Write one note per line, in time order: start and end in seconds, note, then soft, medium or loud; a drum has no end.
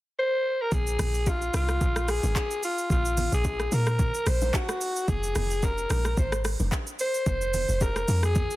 0.19 0.63 C5 loud
0.62 0.75 A#4 loud
0.72 0.97 A#1 loud
0.72 1.30 G#4 loud
0.72 kick loud
0.72 low conga medium
0.72 shaker medium
0.87 shaker medium
0.99 1.50 A#1 loud
0.99 cross-stick medium
0.99 open hi-hat medium
0.99 low conga medium
0.99 shaker loud
1.14 shaker soft
1.26 1.55 F4 loud
1.26 kick loud
1.26 high bongo medium
1.26 shaker medium
1.42 shaker soft
1.54 1.79 C2 loud
1.54 2.12 F4 loud
1.54 cross-stick medium
1.54 open hi-hat soft
1.54 low bongo medium
1.54 shaker medium
1.69 cross-stick medium
1.69 shaker medium
1.81 2.20 A#1 loud
1.81 kick loud
1.81 low conga medium
1.81 shaker medium
1.96 cross-stick loud
1.96 shaker medium
2.08 2.37 G#4 loud
2.08 cross-stick medium
2.08 open hi-hat soft
2.08 shaker medium
2.23 2.35 G#1 loud
2.23 low bongo medium
2.23 shaker medium
2.36 2.62 G#4 loud
2.36 kick loud
2.36 clap medium
2.36 high bongo medium
2.36 shaker medium
2.51 shaker medium
2.63 2.89 F4 medium
2.63 open hi-hat soft
2.63 shaker medium
2.78 shaker medium
2.90 3.29 A#1 loud
2.90 3.30 F4 loud
2.90 kick loud
2.90 low conga medium
2.90 shaker medium
3.05 shaker medium
3.17 open hi-hat medium
3.17 low conga medium
3.17 shaker loud
3.32 3.69 A#1 loud
3.32 3.75 G#4 loud
3.32 shaker medium
3.45 kick loud
3.45 high bongo medium
3.45 shaker medium
3.60 cross-stick medium
3.60 shaker soft
3.72 4.11 A#2 loud
3.72 4.30 A#4 loud
3.72 open hi-hat soft
3.72 low bongo medium
3.72 shaker medium
3.87 cross-stick medium
3.87 shaker medium
3.99 kick loud
3.99 low conga medium
3.99 shaker medium
4.14 shaker medium
4.26 4.52 A#1 medium
4.26 4.57 C5 loud
4.26 cross-stick loud
4.26 open hi-hat soft
4.26 shaker medium
4.41 low bongo medium
4.41 shaker soft
4.54 5.11 F#4 loud
4.54 kick loud
4.54 clap medium
4.54 high bongo medium
4.54 shaker medium
4.69 cross-stick loud
4.69 shaker medium
4.81 open hi-hat soft
4.81 shaker medium
4.96 shaker medium
5.08 5.33 F1 loud
5.08 5.66 G#4 loud
5.08 kick loud
5.08 low conga medium
5.08 shaker medium
5.23 shaker medium
5.36 5.86 F1 loud
5.36 cross-stick medium
5.36 open hi-hat medium
5.36 low conga medium
5.36 shaker medium
5.51 shaker medium
5.63 6.18 A#4 loud
5.63 kick loud
5.63 high bongo medium
5.63 shaker medium
5.78 shaker soft
5.90 6.15 A#1 loud
5.90 cross-stick medium
5.90 open hi-hat soft
5.90 low bongo medium
5.90 shaker medium
6.05 cross-stick medium
6.05 shaker medium
6.17 6.56 G#1 loud
6.17 6.43 C5 medium
6.17 kick loud
6.17 low conga medium
6.17 shaker medium
6.32 cross-stick loud
6.32 shaker medium
6.45 cross-stick loud
6.45 open hi-hat soft
6.45 shaker medium
6.60 6.71 F1 medium
6.60 low bongo medium
6.60 shaker soft
6.72 kick loud
6.72 clap medium
6.72 high bongo medium
6.72 shaker medium
6.87 shaker medium
6.99 7.25 C5 loud
6.99 open hi-hat soft
6.99 shaker medium
7.14 shaker medium
7.26 7.65 F1 loud
7.26 7.84 C5 loud
7.26 kick loud
7.26 low conga medium
7.26 shaker medium
7.41 shaker medium
7.54 open hi-hat medium
7.54 low conga medium
7.54 shaker medium
7.69 8.05 F1 loud
7.69 shaker medium
7.81 8.24 A#4 loud
7.81 kick loud
7.81 high bongo medium
7.81 shaker medium
7.96 cross-stick medium
7.96 shaker soft
8.08 8.47 F2 loud
8.08 open hi-hat soft
8.08 low bongo medium
8.08 shaker medium
8.23 8.56 G#4 loud
8.23 cross-stick medium
8.23 shaker soft
8.35 kick loud
8.35 low conga medium
8.35 shaker medium
8.51 shaker medium